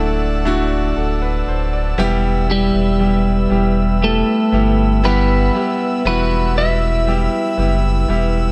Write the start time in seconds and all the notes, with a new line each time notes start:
Already playing: D1 A3 D4 E4 F#4 A4 D5 F#5 A5 E6
0.45 A3 D4 E4 F#4
0.96 D1 A4
1.22 B4
1.47 D1 C5
1.73 D5
1.98 E1 E3 G3 B3 E4 G4 B4 E5 E6
2.48 G3 B3 E4 G4
2.74 E1
3.00 G3 B3 E4 G4
3.50 E1 G3 B3 E4 G4
4.01 G3 A3 B3 E4 G4 A4
4.52 G1 G3 B3 E4 G4
5.04 G3 B3 E4 G4 B4
5.55 G3 B3 E4 G4
6.05 E1 E3 G3 B3 E4 F#4 B4
6.56 G3 B3 E4 F#4 E5
7.07 G3 B3 E4 G4
7.57 F#1 G3 B3 E4 G4
8.08 E1 G3 B3 E4 G4